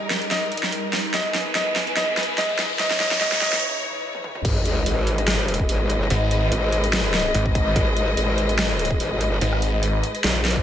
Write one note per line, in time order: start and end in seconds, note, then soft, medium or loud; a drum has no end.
0.00 1.12 G2 medium
0.00 1.12 G3 medium
0.00 1.14 G3 medium
0.00 1.11 D#4 medium
0.00 1.14 D#4 medium
0.00 1.12 A#4 medium
0.00 1.14 A#4 medium
0.00 1.14 D#5 medium
0.00 0.15 A#5 medium
0.00 riser medium
0.10 snare medium
0.10 closed hi-hat soft
0.22 closed hi-hat soft
0.31 0.58 D#5 medium
0.31 snare medium
0.31 closed hi-hat medium
0.52 closed hi-hat soft
0.57 closed hi-hat medium
0.63 snare medium
0.72 closed hi-hat medium
0.93 snare medium
0.93 closed hi-hat medium
1.14 4.42 E2 medium
1.14 2.78 E3 medium
1.14 2.78 G#4 medium
1.14 2.78 B4 medium
1.14 1.41 D#5 loud
1.14 snare medium
1.14 closed hi-hat medium
1.35 snare medium
1.35 closed hi-hat medium
1.55 1.83 D#5 loud
1.55 snare medium
1.55 closed hi-hat medium
1.69 3.46 B4 medium
1.76 snare medium
1.76 closed hi-hat medium
1.87 2.79 E5 medium
1.87 closed hi-hat soft
1.97 2.24 D#5 loud
1.97 snare medium
1.97 closed hi-hat medium
2.17 snare medium
2.17 closed hi-hat soft
2.23 closed hi-hat medium
2.38 2.65 D#5 loud
2.38 snare medium
2.38 closed hi-hat medium
2.59 snare medium
2.59 closed hi-hat medium
2.79 3.62 E3 medium
2.79 4.43 E3 medium
2.79 4.43 D#4 medium
2.79 4.43 C#5 medium
2.79 2.98 D#5 loud
2.79 snare medium
2.79 closed hi-hat medium
2.91 snare medium
3.00 3.19 D#5 loud
3.00 snare medium
3.00 closed hi-hat medium
3.11 snare medium
3.11 closed hi-hat soft
3.21 3.40 D#5 loud
3.21 snare loud
3.21 closed hi-hat medium
3.32 snare medium
3.41 3.61 D#5 loud
3.41 snare loud
3.41 closed hi-hat medium
3.53 snare medium
3.53 closed hi-hat soft
4.15 high tom medium
4.24 mid tom medium
4.35 mid tom medium
4.45 4.85 G#1 medium
4.45 10.63 G#3 medium
4.45 10.63 G#4 medium
4.45 10.63 B4 medium
4.45 10.63 D#5 medium
4.45 kick loud
4.45 closed hi-hat medium
4.45 crash loud
4.45 sub drop medium
4.66 closed hi-hat medium
4.86 5.67 G#1 loud
4.86 closed hi-hat medium
5.07 closed hi-hat medium
5.18 closed hi-hat soft
5.28 cross-stick medium
5.28 snare loud
5.28 closed hi-hat medium
5.48 closed hi-hat soft
5.54 closed hi-hat medium
5.60 kick medium
5.69 6.09 G#1 loud
5.69 closed hi-hat medium
5.90 closed hi-hat medium
6.10 6.50 G#1 loud
6.10 closed hi-hat medium
6.31 closed hi-hat medium
6.52 7.33 G#1 loud
6.52 closed hi-hat medium
6.72 closed hi-hat medium
6.84 closed hi-hat soft
6.93 snare loud
6.93 closed hi-hat medium
7.14 snare medium
7.14 closed hi-hat medium
7.19 closed hi-hat medium
7.35 7.74 G#1 medium
7.35 closed hi-hat medium
7.46 kick medium
7.55 kick loud
7.55 closed hi-hat medium
7.76 8.16 G#1 loud
7.76 kick loud
7.76 closed hi-hat medium
7.97 closed hi-hat medium
8.17 8.98 G#1 loud
8.17 closed hi-hat medium
8.38 closed hi-hat medium
8.49 closed hi-hat soft
8.59 cross-stick medium
8.59 snare loud
8.59 closed hi-hat medium
8.79 closed hi-hat soft
8.85 closed hi-hat medium
8.91 kick medium
9.00 9.40 G#1 loud
9.00 closed hi-hat medium
9.21 closed hi-hat medium
9.41 9.81 G#1 loud
9.41 closed hi-hat medium
9.53 cross-stick medium
9.62 closed hi-hat medium
9.83 10.02 G#1 loud
9.83 closed hi-hat medium
10.03 closed hi-hat medium
10.15 closed hi-hat soft
10.24 10.63 A#1 medium
10.24 snare loud
10.24 closed hi-hat medium
10.45 snare medium
10.45 closed hi-hat soft
10.50 closed hi-hat medium
10.56 kick medium